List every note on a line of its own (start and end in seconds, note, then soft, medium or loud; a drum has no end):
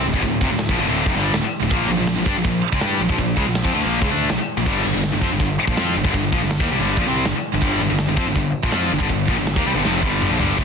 0.05 0.12 D1 medium
0.05 0.13 D2 medium
0.05 0.14 A2 medium
0.13 0.22 D1 loud
0.13 0.23 D2 medium
0.13 0.23 A2 loud
0.13 kick loud
0.22 0.40 D1 medium
0.22 0.39 D2 medium
0.22 0.39 A2 medium
0.22 kick medium
0.22 open hi-hat medium
0.41 0.50 F1 medium
0.41 0.51 F2 medium
0.41 0.51 C3 loud
0.41 kick loud
0.51 0.68 D1 medium
0.51 0.67 D2 medium
0.51 0.67 A2 medium
0.59 snare loud
0.59 open hi-hat medium
0.69 0.78 A#1 medium
0.69 0.79 A#2 medium
0.69 0.79 F3 medium
0.69 kick loud
0.79 0.88 G1 medium
0.79 0.88 G2 medium
0.79 0.88 D3 loud
0.88 1.05 D1 medium
0.88 1.06 D2 medium
0.88 1.07 A2 medium
0.88 1.07 D3 medium
0.97 open hi-hat medium
1.06 1.15 F1 loud
1.06 1.16 F2 medium
1.06 1.16 C3 loud
1.06 kick loud
1.16 1.33 G1 loud
1.16 1.34 G2 medium
1.16 1.34 D3 loud
1.16 1.34 G3 loud
1.34 1.43 D1 medium
1.34 1.43 D2 medium
1.34 1.44 A2 medium
1.34 snare loud
1.34 open hi-hat medium
1.43 muted picked electric bass stroke soft
1.43 muted distorted electric guitar stroke medium
1.61 1.70 D1 medium
1.61 1.71 D2 medium
1.61 1.72 A2 medium
1.71 1.87 A#1 medium
1.71 1.89 A#2 medium
1.71 1.90 F3 medium
1.71 1.90 A#3 loud
1.71 kick loud
1.71 open hi-hat medium
1.88 1.96 A#1 medium
1.88 1.99 A#2 medium
1.88 2.00 F3 medium
1.97 2.15 A#1 medium
1.97 2.15 A#2 medium
1.97 2.15 F3 medium
2.07 snare loud
2.07 open hi-hat medium
2.16 2.25 A#1 medium
2.16 2.27 A#2 medium
2.16 2.27 F3 medium
2.26 2.35 G2 medium
2.26 2.36 G3 medium
2.26 2.36 D4 loud
2.26 kick loud
2.36 2.44 A#1 medium
2.36 2.45 A#2 medium
2.36 2.46 F3 medium
2.45 2.62 A#1 medium
2.45 2.61 A#2 medium
2.45 2.61 F3 medium
2.45 kick loud
2.45 open hi-hat medium
2.72 2.81 C#2 medium
2.72 2.82 C#3 medium
2.72 2.82 G#3 loud
2.72 kick loud
2.81 2.99 G2 medium
2.81 3.00 G3 medium
2.81 3.00 D4 medium
2.81 3.01 G4 medium
2.81 snare loud
2.81 open hi-hat medium
3.00 3.09 A#1 medium
3.00 3.08 A#2 medium
3.00 3.09 F3 medium
3.09 3.18 A#1 loud
3.09 3.17 A#2 medium
3.09 3.18 F3 loud
3.09 kick loud
3.18 3.36 A#1 medium
3.18 3.33 A#2 medium
3.18 3.34 F3 medium
3.18 kick medium
3.18 open hi-hat medium
3.37 3.46 C#2 medium
3.37 3.46 C#3 medium
3.37 3.46 G#3 medium
3.37 kick loud
3.47 3.64 A#1 medium
3.47 3.61 A#2 medium
3.47 3.61 F3 medium
3.55 snare loud
3.55 open hi-hat medium
3.65 3.73 F2 medium
3.65 3.73 F3 medium
3.65 3.74 C4 medium
3.65 kick medium
3.73 3.83 D2 medium
3.73 3.82 D3 medium
3.73 3.83 A3 medium
3.83 4.02 A#1 medium
3.83 4.01 A#2 medium
3.83 4.01 F3 loud
3.83 4.01 A#3 loud
3.93 open hi-hat medium
4.01 4.10 C#2 loud
4.01 4.09 C#3 medium
4.01 4.10 G#3 loud
4.01 kick loud
4.10 4.29 D2 medium
4.10 4.28 D3 medium
4.10 4.29 A3 medium
4.10 4.29 D4 loud
4.29 4.38 A#1 medium
4.29 4.37 A#2 medium
4.29 4.39 F3 medium
4.29 snare loud
4.29 open hi-hat medium
4.38 muted distorted electric guitar stroke medium
4.38 muted picked electric bass stroke soft
4.57 4.65 A#1 medium
4.57 4.65 A#2 medium
4.57 4.66 F3 medium
4.66 4.83 G1 medium
4.66 4.83 G2 medium
4.66 4.83 D3 medium
4.66 4.85 G3 medium
4.66 kick loud
4.66 crash medium
4.84 4.94 G1 medium
4.84 4.92 G2 medium
4.84 4.92 D3 medium
4.93 5.12 G1 medium
4.93 5.08 G2 medium
4.93 5.08 D3 medium
5.03 snare loud
5.03 open hi-hat medium
5.12 5.21 G1 medium
5.12 5.21 G2 medium
5.12 5.22 D3 medium
5.21 5.30 F2 medium
5.21 5.31 F3 medium
5.21 5.31 C4 medium
5.21 kick medium
5.31 5.39 G1 medium
5.31 5.40 G2 medium
5.31 5.40 D3 medium
5.40 5.57 G1 medium
5.40 5.55 G2 medium
5.40 5.55 D3 medium
5.40 kick medium
5.40 open hi-hat medium
5.67 5.77 A#1 medium
5.67 5.76 A#2 medium
5.67 5.75 F3 loud
5.67 kick loud
5.76 5.95 F2 loud
5.76 5.95 F3 medium
5.76 5.95 C4 loud
5.76 5.95 F4 loud
5.76 snare loud
5.76 open hi-hat medium
5.95 6.04 G1 medium
5.95 6.03 G2 medium
5.95 6.03 D3 medium
6.04 6.13 G1 loud
6.04 6.13 G2 medium
6.04 6.13 D3 medium
6.04 kick loud
6.13 6.31 G1 medium
6.13 6.29 G2 medium
6.13 6.29 D3 medium
6.13 kick medium
6.13 open hi-hat medium
6.32 6.41 A#1 medium
6.32 6.41 A#2 medium
6.32 6.42 F3 loud
6.32 kick loud
6.43 6.59 G1 medium
6.43 6.57 G2 medium
6.43 6.57 D3 medium
6.51 snare loud
6.51 open hi-hat medium
6.60 6.69 D#2 medium
6.60 6.70 D#3 medium
6.60 6.70 A#3 medium
6.60 kick loud
6.70 6.79 C2 medium
6.70 6.79 C3 medium
6.70 6.79 G3 loud
6.79 6.96 G1 medium
6.79 6.97 G2 medium
6.79 6.97 D3 medium
6.79 6.98 G3 loud
6.88 open hi-hat medium
6.97 7.06 A#1 loud
6.97 7.07 A#2 medium
6.97 7.07 F3 loud
6.97 kick loud
7.07 7.25 C2 medium
7.07 7.25 C3 medium
7.07 7.25 G3 medium
7.07 7.25 C4 loud
7.25 7.34 G1 medium
7.25 7.34 G2 medium
7.25 7.35 D3 medium
7.25 snare loud
7.25 open hi-hat medium
7.35 muted picked electric bass stroke soft
7.35 muted distorted electric guitar stroke medium
7.53 7.61 G1 medium
7.53 7.61 G2 medium
7.53 7.62 D3 medium
7.62 7.79 G1 medium
7.62 7.80 G2 medium
7.62 7.81 D3 loud
7.62 7.81 G3 medium
7.62 kick loud
7.62 open hi-hat medium
7.81 7.89 G1 medium
7.81 7.89 G2 medium
7.81 7.89 D3 medium
7.90 8.07 G1 medium
7.90 8.05 G2 medium
7.90 8.05 D3 medium
7.99 snare loud
7.99 open hi-hat medium
8.08 8.16 G1 medium
8.08 8.18 G2 medium
8.08 8.16 D3 medium
8.17 8.26 F2 medium
8.17 8.26 F3 loud
8.17 8.26 C4 loud
8.17 kick loud
8.27 8.35 G1 medium
8.27 8.35 G2 medium
8.27 8.36 D3 medium
8.36 8.53 G1 medium
8.36 8.51 G2 medium
8.36 8.51 D3 medium
8.36 kick medium
8.36 open hi-hat medium
8.63 8.73 A#1 medium
8.63 8.73 A#2 medium
8.63 8.71 F3 medium
8.63 kick loud
8.72 8.91 F2 medium
8.72 8.91 F3 medium
8.72 8.91 C4 medium
8.72 8.91 F4 loud
8.72 snare loud
8.72 open hi-hat medium
8.91 9.00 G1 medium
8.91 8.99 G2 medium
8.91 9.00 D3 medium
9.00 9.09 G1 loud
9.00 9.10 G2 medium
9.00 9.10 D3 loud
9.00 kick loud
9.10 9.27 G1 medium
9.10 9.26 G2 medium
9.10 9.26 D3 medium
9.10 kick medium
9.10 open hi-hat medium
9.28 9.37 A#1 medium
9.28 9.38 A#2 medium
9.28 9.38 F3 loud
9.28 kick loud
9.38 9.56 G1 medium
9.38 9.53 G2 medium
9.38 9.53 D3 medium
9.47 snare loud
9.47 open hi-hat medium
9.56 9.65 D#2 loud
9.56 9.66 D#3 medium
9.56 9.66 A#3 loud
9.56 kick loud
9.65 9.75 C2 medium
9.65 9.74 C3 medium
9.65 9.75 G3 loud
9.75 9.84 G1 medium
9.75 9.83 G2 medium
9.75 9.84 D3 medium
9.84 10.02 F1 medium
9.84 10.02 F2 medium
9.84 10.02 C3 medium
9.84 10.03 F3 medium
9.84 snare medium
10.02 10.29 G1 medium
10.02 10.30 G2 medium
10.02 10.30 D3 medium
10.02 10.31 G3 loud
10.02 kick medium
10.22 mid tom medium
10.30 10.40 A#1 loud
10.30 10.39 A#2 medium
10.30 10.39 F3 medium
10.39 10.58 G1 loud
10.39 10.58 G2 medium
10.39 10.58 D3 medium
10.39 10.58 G3 medium
10.39 floor tom medium
10.58 10.64 D1 medium
10.58 10.64 D2 medium
10.58 10.64 A2 medium
10.58 10.64 D3 medium
10.58 kick loud
10.58 crash loud